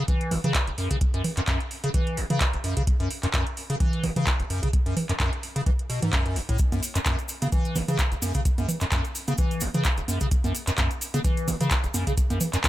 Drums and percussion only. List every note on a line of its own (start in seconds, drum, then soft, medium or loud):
0.08 kick loud
0.08 closed hi-hat medium
0.21 closed hi-hat soft
0.31 open hi-hat loud
0.31 low conga medium
0.44 closed hi-hat medium
0.44 low conga medium
0.54 kick loud
0.54 clap loud
0.54 closed hi-hat medium
0.67 closed hi-hat soft
0.78 open hi-hat medium
0.91 kick medium
0.91 closed hi-hat soft
1.01 kick loud
1.01 closed hi-hat medium
1.14 closed hi-hat soft
1.24 open hi-hat loud
1.24 low conga medium
1.37 clap soft
1.37 closed hi-hat soft
1.47 kick loud
1.47 clap loud
1.47 closed hi-hat medium
1.60 closed hi-hat soft
1.71 open hi-hat medium
1.84 closed hi-hat medium
1.94 kick loud
1.94 closed hi-hat medium
2.07 closed hi-hat soft
2.17 open hi-hat loud
2.30 closed hi-hat medium
2.30 low conga medium
2.41 kick loud
2.41 clap loud
2.41 closed hi-hat medium
2.53 closed hi-hat soft
2.64 open hi-hat medium
2.77 kick medium
2.77 closed hi-hat medium
2.87 kick loud
2.87 closed hi-hat medium
3.00 closed hi-hat soft
3.11 open hi-hat loud
3.23 clap soft
3.23 closed hi-hat soft
3.34 kick loud
3.34 clap loud
3.34 closed hi-hat medium
3.47 closed hi-hat soft
3.57 open hi-hat medium
3.70 closed hi-hat medium
3.80 kick loud
3.80 closed hi-hat medium
3.93 closed hi-hat soft
4.04 open hi-hat loud
4.04 low conga medium
4.16 closed hi-hat soft
4.16 low conga medium
4.27 kick loud
4.27 clap loud
4.27 closed hi-hat soft
4.40 closed hi-hat soft
4.50 open hi-hat medium
4.63 kick medium
4.63 closed hi-hat soft
4.73 kick loud
4.73 closed hi-hat soft
4.86 closed hi-hat soft
4.97 open hi-hat loud
4.97 low conga medium
5.09 clap soft
5.09 closed hi-hat soft
5.20 kick loud
5.20 clap loud
5.20 closed hi-hat soft
5.33 closed hi-hat soft
5.43 open hi-hat medium
5.56 closed hi-hat medium
5.66 kick loud
5.66 closed hi-hat soft
5.79 closed hi-hat soft
5.90 open hi-hat loud
6.02 closed hi-hat soft
6.02 low conga medium
6.13 kick loud
6.13 clap loud
6.13 closed hi-hat soft
6.26 closed hi-hat soft
6.36 open hi-hat medium
6.49 kick medium
6.49 closed hi-hat soft
6.58 kick loud
6.58 closed hi-hat soft
6.58 cabasa soft
6.72 closed hi-hat soft
6.72 high conga medium
6.72 cabasa soft
6.83 open hi-hat loud
6.83 cabasa medium
6.95 clap soft
6.95 closed hi-hat medium
6.95 cabasa soft
7.06 kick loud
7.06 clap loud
7.06 closed hi-hat soft
7.06 high conga soft
7.06 cabasa soft
7.19 closed hi-hat soft
7.19 cabasa soft
7.29 open hi-hat medium
7.29 cabasa loud
7.42 closed hi-hat medium
7.42 high conga medium
7.42 cabasa soft
7.52 kick loud
7.52 closed hi-hat soft
7.52 cabasa soft
7.65 closed hi-hat soft
7.65 cabasa soft
7.75 open hi-hat loud
7.75 high conga soft
7.75 low conga medium
7.75 cabasa medium
7.88 closed hi-hat soft
7.88 low conga medium
7.88 cabasa soft
7.99 kick loud
7.99 clap loud
7.99 closed hi-hat medium
7.99 cabasa soft
8.12 closed hi-hat soft
8.12 cabasa soft
8.22 open hi-hat medium
8.22 high conga medium
8.22 cabasa medium
8.34 kick medium
8.34 closed hi-hat soft
8.34 cabasa soft
8.45 kick loud
8.45 closed hi-hat medium
8.45 cabasa medium
8.58 closed hi-hat soft
8.58 high conga medium
8.58 cabasa soft
8.69 open hi-hat loud
8.69 low conga medium
8.69 cabasa medium
8.80 clap soft
8.80 closed hi-hat medium
8.80 cabasa soft
8.92 kick loud
8.92 clap loud
8.92 closed hi-hat medium
8.92 high conga soft
8.92 cabasa soft
9.05 closed hi-hat soft
9.05 cabasa soft
9.15 open hi-hat medium
9.15 cabasa medium
9.28 closed hi-hat medium
9.28 high conga medium
9.28 cabasa soft
9.38 kick loud
9.38 closed hi-hat medium
9.38 cabasa medium
9.51 closed hi-hat soft
9.51 cabasa soft
9.60 open hi-hat loud
9.60 high conga soft
9.60 cabasa medium
9.74 closed hi-hat medium
9.74 low conga medium
9.74 cabasa soft
9.84 kick loud
9.84 clap loud
9.84 closed hi-hat soft
9.84 cabasa medium
9.97 closed hi-hat soft
9.97 cabasa soft
10.08 open hi-hat medium
10.08 high conga medium
10.08 cabasa medium
10.20 kick medium
10.20 closed hi-hat medium
10.20 cabasa soft
10.31 kick loud
10.31 closed hi-hat medium
10.31 cabasa soft
10.44 closed hi-hat soft
10.44 high conga medium
10.44 cabasa soft
10.55 open hi-hat loud
10.55 cabasa medium
10.67 clap soft
10.67 closed hi-hat medium
10.67 cabasa soft
10.78 kick loud
10.78 clap loud
10.78 closed hi-hat medium
10.78 high conga soft
10.78 cabasa soft
10.91 closed hi-hat soft
10.91 cabasa soft
11.01 open hi-hat medium
11.01 cabasa medium
11.14 closed hi-hat medium
11.14 high conga medium
11.14 cabasa soft
11.24 kick loud
11.24 closed hi-hat medium
11.24 cabasa soft
11.37 closed hi-hat soft
11.37 cabasa soft
11.48 open hi-hat loud
11.48 high conga soft
11.48 low conga loud
11.48 cabasa medium
11.61 closed hi-hat medium
11.61 low conga medium
11.61 cabasa soft
11.71 kick loud
11.71 clap loud
11.71 closed hi-hat medium
11.71 cabasa medium
11.84 closed hi-hat soft
11.84 cabasa soft
11.94 open hi-hat medium
11.94 high conga medium
11.94 cabasa medium
12.07 kick medium
12.07 closed hi-hat medium
12.07 cabasa soft
12.17 kick loud
12.17 closed hi-hat medium
12.17 cabasa medium
12.30 closed hi-hat soft
12.30 high conga medium
12.30 cabasa soft
12.40 open hi-hat loud
12.40 low conga medium
12.40 cabasa medium
12.53 clap soft
12.53 closed hi-hat medium
12.53 cabasa soft
12.64 kick loud
12.64 clap loud
12.64 closed hi-hat medium
12.64 high conga soft
12.64 cabasa medium